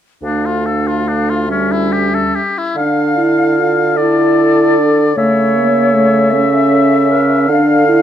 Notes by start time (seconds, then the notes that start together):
0.22 D2 A3 D4 F5
0.45 F4
0.67 A4
0.87 F4
1.08 D4
1.30 F4
1.48 G3 C#4 E5
1.72 E4
1.92 G4
2.15 A4
2.36 G4
2.58 E4
2.75 D3 D4 A4 F5
3.17 E4
3.58 F4
3.95 E4 A4 D5
4.78 D4
5.15 C#3 A3 C#5 E5
5.56 A#3
5.94 A3
6.31 C#4 A4 E5
6.71 A4
7.11 A#4
7.48 D3 D4 A4 F5
7.88 E4